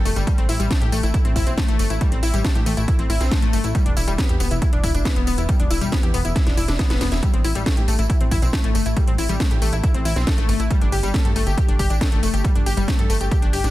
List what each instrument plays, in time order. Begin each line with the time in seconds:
0.05 analog synth bass F1, synth pluck A3, open hi-hat, tambourine
0.16 analog synth bass G1, synth pluck G3, closed hi-hat, tambourine
0.27 synth pluck G3, kick, closed hi-hat, tambourine
0.38 analog synth bass A1, synth pluck C4, closed hi-hat
0.49 analog synth bass A1, synth pluck E4, open hi-hat, tambourine
0.60 analog synth bass A1, synth pluck G3, closed hi-hat, tambourine
0.71 synth pluck A3, kick, snare, closed hi-hat, tambourine
0.81 analog synth bass A2, synth pluck G4, closed hi-hat
0.92 analog synth bass A1, synth pluck A3, open hi-hat, tambourine
1.03 analog synth bass A1, synth pluck E4, closed hi-hat, tambourine
1.14 synth pluck E4, kick, closed hi-hat, tambourine
1.25 analog synth bass A1, synth pluck C4, closed hi-hat
1.36 analog synth bass A1, synth pluck E4, kick, open hi-hat, tambourine
1.47 analog synth bass B1, synth pluck C4, closed hi-hat, tambourine
1.58 synth pluck A3, kick, snare, closed hi-hat, tambourine
1.68 analog synth bass A1, synth pluck A3, closed hi-hat
1.79 analog synth bass G1, synth pluck A3, open hi-hat, tambourine
1.90 analog synth bass A1, synth pluck E4, closed hi-hat, tambourine
2.01 synth pluck G3, kick, closed hi-hat, tambourine
2.12 analog synth bass A1, synth pluck C4, closed hi-hat
2.23 analog synth bass A1, synth pluck E4, open hi-hat, tambourine
2.34 analog synth bass A1, synth pluck G3, closed hi-hat, tambourine
2.45 synth pluck A3, kick, snare, closed hi-hat
2.55 analog synth bass A2, synth pluck G4, closed hi-hat
2.66 analog synth bass A1, synth pluck A3, open hi-hat, tambourine
2.77 analog synth bass A1, synth pluck E4, closed hi-hat, tambourine
2.88 synth pluck E4, kick, closed hi-hat
2.99 analog synth bass A1, synth pluck C4, closed hi-hat
3.10 analog synth bass A1, synth pluck E4, open hi-hat, tambourine
3.21 analog synth bass B1, synth pluck C4, snare, closed hi-hat, tambourine
3.31 synth pluck A3, kick, snare, closed hi-hat
3.42 analog synth bass A1, synth pluck A3, closed hi-hat
3.53 analog synth bass G1, synth pluck A3, open hi-hat, tambourine
3.64 analog synth bass A1, synth pluck E4, closed hi-hat, tambourine
3.75 synth pluck G3, kick, closed hi-hat, tambourine
3.86 analog synth bass E1, synth pluck D4, closed hi-hat
3.97 analog synth bass E1, synth pluck E4, open hi-hat, tambourine
4.08 analog synth bass E1, synth pluck G3, closed hi-hat, tambourine
4.18 synth pluck B3, kick, snare, closed hi-hat, tambourine
4.29 analog synth bass E2, synth pluck G4, closed hi-hat
4.40 analog synth bass E1, synth pluck B3, open hi-hat, tambourine
4.51 analog synth bass E1, synth pluck E4, closed hi-hat, tambourine
4.62 synth pluck E4, kick, closed hi-hat, tambourine
4.73 analog synth bass E1, synth pluck D4, closed hi-hat
4.84 analog synth bass E1, synth pluck E4, kick, open hi-hat, tambourine
4.94 analog synth bass F1, synth pluck D4, closed hi-hat, tambourine
5.05 synth pluck B3, kick, snare, closed hi-hat
5.16 analog synth bass E1, synth pluck B3, closed hi-hat
5.27 analog synth bass D1, synth pluck B3, open hi-hat, tambourine
5.38 analog synth bass E1, synth pluck E4, closed hi-hat, tambourine
5.49 synth pluck G3, kick, closed hi-hat, tambourine
5.60 analog synth bass E1, synth pluck D4, closed hi-hat
5.71 analog synth bass E1, synth pluck E4, open hi-hat, tambourine
5.81 analog synth bass E1, synth pluck G3, closed hi-hat, tambourine
5.92 synth pluck B3, kick, snare, closed hi-hat
6.03 analog synth bass E2, synth pluck G4, closed hi-hat
6.14 analog synth bass E1, synth pluck B3, open hi-hat, tambourine
6.25 analog synth bass E1, synth pluck E4, closed hi-hat, tambourine
6.36 synth pluck E4, kick, snare, closed hi-hat, tambourine
6.47 analog synth bass E1, synth pluck D4, snare, closed hi-hat
6.57 analog synth bass E1, synth pluck E4, open hi-hat, tambourine
6.68 analog synth bass F1, synth pluck D4, snare, closed hi-hat, tambourine
6.79 synth pluck B3, kick, snare, closed hi-hat, tambourine
6.90 analog synth bass E1, synth pluck B3, snare, closed hi-hat
7.01 analog synth bass E1, synth pluck B3, snare, open hi-hat, tambourine
7.12 analog synth bass E1, synth pluck E4, snare, closed hi-hat, tambourine
7.23 synth pluck G3, kick, closed hi-hat, tambourine
7.34 analog synth bass A1, synth pluck C4, closed hi-hat
7.44 analog synth bass A1, synth pluck E4, open hi-hat, tambourine
7.55 analog synth bass A1, synth pluck G3, closed hi-hat, tambourine
7.66 synth pluck A3, kick, snare, closed hi-hat
7.77 analog synth bass A2, synth pluck G4, closed hi-hat
7.88 analog synth bass A1, synth pluck A3, open hi-hat, tambourine
7.99 analog synth bass A1, synth pluck E4, closed hi-hat, tambourine
8.10 synth pluck E4, kick, closed hi-hat
8.21 analog synth bass A1, synth pluck C4, closed hi-hat
8.31 analog synth bass A1, synth pluck E4, kick, open hi-hat, tambourine
8.42 analog synth bass B1, synth pluck C4, closed hi-hat, tambourine
8.53 synth pluck A3, kick, snare, closed hi-hat
8.64 analog synth bass A1, synth pluck A3, closed hi-hat
8.75 analog synth bass G1, synth pluck A3, open hi-hat, tambourine
8.86 analog synth bass A1, synth pluck E4, closed hi-hat, tambourine
8.97 synth pluck G3, kick, closed hi-hat, tambourine
9.07 analog synth bass A1, synth pluck C4, closed hi-hat
9.18 analog synth bass A1, synth pluck E4, open hi-hat, tambourine
9.29 analog synth bass A1, synth pluck G3, closed hi-hat, tambourine
9.40 synth pluck A3, kick, snare, closed hi-hat
9.51 analog synth bass A2, synth pluck G4, closed hi-hat
9.62 analog synth bass A1, synth pluck A3, open hi-hat, tambourine
9.73 analog synth bass A1, synth pluck E4, closed hi-hat, tambourine
9.84 synth pluck E4, kick, closed hi-hat, tambourine
9.94 analog synth bass A1, synth pluck C4, closed hi-hat
10.05 analog synth bass A1, synth pluck E4, open hi-hat, tambourine
10.16 analog synth bass B1, synth pluck C4, snare, closed hi-hat, tambourine
10.27 synth pluck A3, kick, snare, closed hi-hat, tambourine
10.38 analog synth bass A1, synth pluck A3, closed hi-hat
10.49 analog synth bass G1, synth pluck A3, open hi-hat, tambourine
10.60 analog synth bass A1, synth pluck E4, closed hi-hat, tambourine
10.71 synth pluck G3, kick, closed hi-hat, tambourine
10.81 analog synth bass G1, synth pluck D4, closed hi-hat
10.92 analog synth bass G1, synth pluck G4, open hi-hat, tambourine
11.03 analog synth bass G1, synth pluck G3, closed hi-hat, tambourine
11.14 synth pluck A3, kick, snare, closed hi-hat
11.25 analog synth bass G2, synth pluck A4, closed hi-hat
11.36 analog synth bass G1, synth pluck A3, open hi-hat, tambourine
11.47 analog synth bass G1, synth pluck G4, closed hi-hat, tambourine
11.58 synth pluck G4, kick, closed hi-hat, tambourine
11.68 analog synth bass G1, synth pluck D4, closed hi-hat
11.79 analog synth bass G1, synth pluck G4, kick, open hi-hat, tambourine
11.90 analog synth bass A1, synth pluck D4, closed hi-hat, tambourine
12.01 synth pluck A3, kick, snare, closed hi-hat
12.12 analog synth bass G1, synth pluck A3, closed hi-hat
12.23 analog synth bass F1, synth pluck A3, open hi-hat, tambourine
12.34 analog synth bass G1, synth pluck G4, closed hi-hat, tambourine
12.44 synth pluck G3, kick, closed hi-hat, tambourine
12.55 analog synth bass G1, synth pluck D4, closed hi-hat
12.66 analog synth bass G1, synth pluck G4, open hi-hat, tambourine
12.77 analog synth bass G1, synth pluck G3, closed hi-hat, tambourine
12.88 synth pluck A3, kick, snare, closed hi-hat
12.99 analog synth bass G2, synth pluck A4, closed hi-hat
13.10 analog synth bass G1, synth pluck A3, open hi-hat, tambourine
13.21 analog synth bass G1, synth pluck G4, closed hi-hat, tambourine
13.31 synth pluck G4, kick, closed hi-hat, tambourine
13.42 analog synth bass G1, synth pluck D4, closed hi-hat
13.53 analog synth bass G1, synth pluck G4, open hi-hat, tambourine
13.64 analog synth bass A1, synth pluck D4, snare, closed hi-hat, tambourine